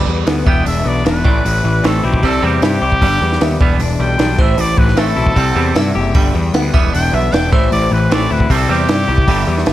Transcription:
Already playing: B4
0.07 E2 G2 D3 G3
0.26 D2 G2 D3 B3, snare, open hi-hat
0.45 E1 E2 E3 G3 B3 E5 G5, kick
0.65 E1 E3 G3 D4 E5, open hi-hat
0.85 B1 E3 G3 B3 D5
1.05 E1 E3 G3 D4 B4, snare, open hi-hat
1.24 A1 A2 E3 A3 D5, kick
1.45 A1 A2 E3, open hi-hat
1.64 A1 A2 E3
1.84 A1 A2 E3 A3 C4 A4, snare, open hi-hat
2.03 B1 A2 E3 E4 G4
2.14 kick
2.23 C2 C3 G3 C4 A4 C5, kick, open hi-hat
2.42 E2 C3 G3 C4 G4
2.62 G2 C3 G3 E4 G4, snare, open hi-hat
2.82 C2 C3 G3 G4
2.92 kick
3.01 G1 G2 D3 G3 D5, kick, open hi-hat
3.21 E2 G2 D3 G3
3.32 snare
3.41 D#2 G2 D3 B3 E5, snare, open hi-hat
3.61 E1 E2 E3 G3 B3 D5, kick
3.79 E1 E3 G3 D4, open hi-hat
4.00 B1 E3 G3 G5
4.19 B1 E3 G3 D4, snare, open hi-hat
4.38 A1 A2 E3 A3 C5 E5, kick
4.58 A1 A2 E3 D5, open hi-hat
4.77 A1 A2 E3 B4, kick
4.88 snare
4.96 A1 A2 E3 A3 C4 A4 E5, snare, open hi-hat
5.16 B1 A2 E3 E4
5.27 kick
5.35 C2 C3 G3 C4 F#5, kick, open hi-hat
5.55 E2 C3 G3 C4
5.75 G2 C3 G3 E4 E5, snare, open hi-hat
5.95 F#1 C3 G3 G4
6.14 G1 G2 D3 G3 G5, kick, open hi-hat
6.34 E2 G2 D3 G3
6.54 D2 G2 D3 B3 F#5, snare, open hi-hat
6.73 E1 E2 E3 G3 B3 E5, kick
6.93 E1 E3 G3 D4 G5, open hi-hat
7.13 B1 E3 G3 B3 E5
7.32 E1 E3 G3 D4 D5 G5, snare, open hi-hat
7.52 A1 A2 E3 A3 C5 E5, kick
7.71 A1 A2 E3 D5, open hi-hat
7.91 A1 A2 E3 B4
8.10 A1 A2 E3 A3 C4 D5, snare, open hi-hat
8.30 D2 A2 E3 E4 B4
8.40 kick
8.50 C2 C3 G3 C4 A4 E5, kick, open hi-hat
8.69 E2 C3 G3 C4 G4
8.89 G2 C3 G3 E4, snare, open hi-hat
9.08 C2 C3 G3 G4
9.18 kick
9.27 G1 G2 D3 G3 E5, kick, open hi-hat
9.47 E2 G2 D3 G3
9.58 snare
9.66 F#1 G2 D3 B3, snare, open hi-hat

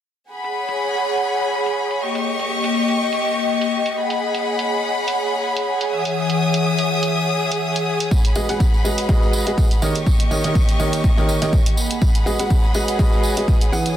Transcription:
0.31 G#4 F#5 B5
0.44 C#5, closed hi-hat
0.58 F#5
0.69 closed hi-hat
1.17 closed hi-hat
1.66 closed hi-hat
1.91 closed hi-hat
2.02 A#3 G4 D#5 C#6
2.15 closed hi-hat
2.37 G5, closed hi-hat
2.44 D#5
2.64 closed hi-hat
2.88 closed hi-hat
3.13 closed hi-hat
3.61 closed hi-hat
3.86 closed hi-hat
3.97 G#4 F#5 B5
4.10 closed hi-hat
4.30 C#5
4.35 closed hi-hat
4.59 closed hi-hat
4.79 F#5
5.08 closed hi-hat
5.57 closed hi-hat
5.81 closed hi-hat
5.92 E3 E5 D#6
6.05 closed hi-hat
6.30 closed hi-hat
6.54 closed hi-hat
6.78 closed hi-hat
7.03 closed hi-hat
7.52 closed hi-hat
7.76 closed hi-hat
8.00 closed hi-hat
8.11 F#5 B5, kick, tambourine
8.24 closed hi-hat, tambourine
8.35 G#3 F#4 G#4 B4 D#5, tambourine
8.49 G#3 F#4 G#4 B4 F#5, closed hi-hat, tambourine
8.60 kick, tambourine
8.74 tambourine
8.85 G#3 F#4 G#4 B4 D#5, tambourine
8.98 closed hi-hat, tambourine
9.09 G#3 F#4 G#4 B4 D#5, kick, tambourine
9.22 tambourine
9.33 tambourine
9.47 G#3 F#4 G#4 B4 D#5, closed hi-hat, tambourine
9.58 kick, tambourine
9.71 closed hi-hat, tambourine
9.82 D#3 A#3 G4 A#4 C#5 D#5 C#6, tambourine
9.95 closed hi-hat, tambourine
10.02 G5
10.06 kick, tambourine
10.20 D#5, closed hi-hat, tambourine
10.31 D#3 G4 A#4 C#5 D#5, tambourine
10.44 D#3 G4 A#4 C#5 D#5, closed hi-hat, tambourine
10.55 kick, tambourine
10.69 closed hi-hat, tambourine
10.80 D#3 G4 A#4 C#5 D#5, tambourine
10.93 closed hi-hat, tambourine
11.04 kick, tambourine
11.17 D#3 G4 A#4 C#5 D#5, tambourine
11.29 tambourine
11.42 D#3 G4 A#4 C#5 D#5, closed hi-hat, tambourine
11.53 kick, tambourine
11.66 closed hi-hat, tambourine
11.77 G#4 F#5 B5, tambourine
11.91 closed hi-hat, tambourine
12.02 kick, tambourine
12.12 C#5 F#5, closed hi-hat, tambourine
12.26 G#3 F#4 G#4 B4 D#5, tambourine
12.39 G#3 F#4 G#4 B4 F#5, closed hi-hat, tambourine
12.50 kick, tambourine
12.64 tambourine
12.74 G#3 F#4 G#4 B4 D#5, tambourine
12.88 closed hi-hat, tambourine
12.99 G#3 F#4 G#4 B4 D#5, kick, tambourine
13.12 tambourine
13.23 tambourine
13.37 G#3 F#4 G#4 B4 D#5, closed hi-hat
13.48 kick, tambourine
13.61 closed hi-hat, tambourine
13.72 E3 E4 G#4 B4 F#5 D#6, tambourine
13.86 closed hi-hat, tambourine

